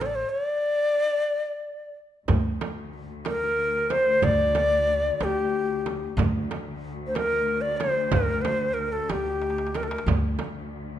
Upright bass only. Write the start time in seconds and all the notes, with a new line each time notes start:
Already playing: A1
2.29 D2
4.23 D2
5.20 D2
6.17 D2
8.13 D2
9.10 D2
10.06 D2